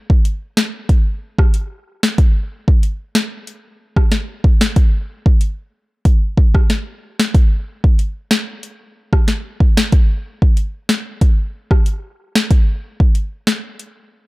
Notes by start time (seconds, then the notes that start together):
0.10 kick
0.25 closed hi-hat
0.57 snare
0.89 kick, closed hi-hat
1.39 kick, cross-stick
1.54 closed hi-hat
2.03 snare
2.18 kick, closed hi-hat
2.68 kick
2.83 closed hi-hat
3.15 snare
3.47 closed hi-hat
3.96 kick, cross-stick
4.12 snare, closed hi-hat
4.44 kick
4.61 snare
4.76 kick, closed hi-hat
5.26 kick
5.41 closed hi-hat
6.05 kick, closed hi-hat
6.37 kick
6.55 kick, cross-stick
6.70 snare, closed hi-hat
7.20 snare
7.34 kick, closed hi-hat
7.84 kick
7.99 closed hi-hat
8.31 snare
8.63 closed hi-hat
9.13 kick, cross-stick
9.28 snare, closed hi-hat
9.60 kick
9.77 snare
9.92 kick, closed hi-hat
10.42 kick
10.57 closed hi-hat
10.89 snare
11.21 kick, closed hi-hat
11.71 kick, cross-stick
11.86 closed hi-hat
12.35 snare
12.51 kick, closed hi-hat
13.00 kick
13.15 closed hi-hat
13.47 snare
13.79 closed hi-hat